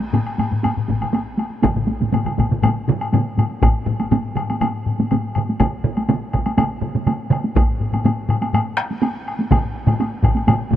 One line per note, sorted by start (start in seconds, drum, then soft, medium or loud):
0.00 taiko high soft
0.13 taiko low-mid loud
0.13 taiko high medium
0.13 high woodblock soft
0.26 taiko high soft
0.26 high woodblock soft
0.38 taiko low-mid medium
0.38 taiko high medium
0.38 high woodblock soft
0.51 taiko low-mid medium
0.51 taiko high soft
0.63 taiko low-mid medium
0.63 taiko high medium
0.63 high woodblock soft
0.76 taiko low-mid medium
0.76 taiko high soft
0.88 taiko medium
0.88 taiko low-mid medium
0.88 taiko high medium
1.01 taiko low-mid medium
1.01 taiko high soft
1.01 high woodblock soft
1.13 taiko high medium
1.13 high woodblock soft
1.38 taiko high medium
1.38 high woodblock soft
1.50 taiko high soft
1.63 taiko loud
1.63 taiko low-mid medium
1.63 taiko mid medium
1.63 taiko high medium
1.63 high woodblock soft
1.76 taiko low-mid medium
1.76 taiko mid medium
1.76 taiko high soft
1.87 taiko high medium
2.01 taiko low-mid medium
2.01 taiko mid medium
2.01 taiko high soft
2.12 taiko low-mid medium
2.12 taiko mid medium
2.12 taiko high medium
2.12 high woodblock soft
2.24 taiko low-mid medium
2.24 taiko mid medium
2.24 taiko high soft
2.24 high woodblock soft
2.38 taiko medium
2.38 taiko low-mid medium
2.38 taiko mid medium
2.38 taiko high medium
2.38 high woodblock soft
2.49 taiko low-mid medium
2.49 taiko mid medium
2.49 taiko high soft
2.62 taiko low-mid loud
2.62 taiko mid medium
2.62 taiko high medium
2.62 high woodblock medium
2.76 taiko high soft
2.88 taiko low-mid medium
2.88 taiko mid loud
2.88 taiko high medium
3.00 taiko high soft
3.00 high woodblock soft
3.13 taiko low-mid medium
3.13 taiko mid medium
3.13 taiko high medium
3.13 high woodblock soft
3.25 taiko high soft
3.38 taiko low-mid medium
3.38 taiko mid medium
3.38 taiko high soft
3.38 high woodblock soft
3.50 taiko high soft
3.62 taiko loud
3.62 taiko low-mid medium
3.62 taiko high medium
3.62 high woodblock soft
3.87 taiko low-mid loud
4.00 taiko high medium
4.00 high woodblock soft
4.11 taiko low-mid loud
4.11 taiko high medium
4.11 high woodblock soft
4.36 taiko low-mid loud
4.36 high woodblock soft
4.50 taiko high medium
4.50 high woodblock soft
4.61 taiko low-mid loud
4.61 taiko high medium
4.61 high woodblock soft
4.86 taiko low-mid medium
4.98 taiko low-mid medium
4.98 taiko high medium
5.11 taiko low-mid medium
5.11 taiko high medium
5.11 high woodblock soft
5.35 taiko low-mid medium
5.35 high woodblock soft
5.49 taiko high medium
5.60 taiko medium
5.60 taiko mid loud
5.60 taiko high medium
5.60 high woodblock medium
5.84 taiko mid medium
5.97 taiko high medium
5.97 high woodblock soft
6.09 taiko mid loud
6.09 taiko high medium
6.09 high woodblock soft
6.33 taiko medium
6.33 taiko mid medium
6.33 high woodblock soft
6.46 taiko high medium
6.46 high woodblock soft
6.57 taiko mid medium
6.57 taiko high medium
6.57 high woodblock medium
6.82 taiko mid medium
6.95 taiko mid medium
6.95 taiko high medium
7.07 taiko mid medium
7.07 taiko high medium
7.07 high woodblock soft
7.30 taiko mid loud
7.30 high woodblock soft
7.44 taiko high medium
7.55 taiko loud
7.55 taiko low-mid loud
7.55 taiko high medium
7.55 high woodblock medium
7.80 taiko low-mid medium
7.92 taiko low-mid medium
7.92 taiko high soft
7.92 high woodblock soft
8.04 taiko low-mid loud
8.04 taiko high medium
8.04 high woodblock soft
8.29 taiko low-mid medium
8.29 high woodblock soft
8.41 taiko high medium
8.41 high woodblock soft
8.53 taiko low-mid medium
8.53 taiko high medium
8.53 high woodblock medium
8.77 taiko rim medium
8.91 taiko high medium
9.02 taiko high medium
9.02 high woodblock soft
9.28 high woodblock soft
9.39 taiko high medium
9.51 taiko medium
9.51 taiko low-mid loud
9.51 taiko mid loud
9.51 taiko high medium
9.51 high woodblock medium
9.87 taiko low-mid medium
9.87 taiko mid medium
9.87 taiko high soft
9.87 high woodblock soft
10.00 taiko high medium
10.00 high woodblock soft
10.24 taiko medium
10.24 taiko low-mid loud
10.24 taiko mid medium
10.24 high woodblock soft
10.36 taiko high medium
10.36 high woodblock soft
10.47 taiko low-mid loud
10.47 taiko mid medium
10.47 taiko high medium
10.47 high woodblock medium
10.71 taiko low-mid loud
10.71 taiko mid medium
10.71 taiko high soft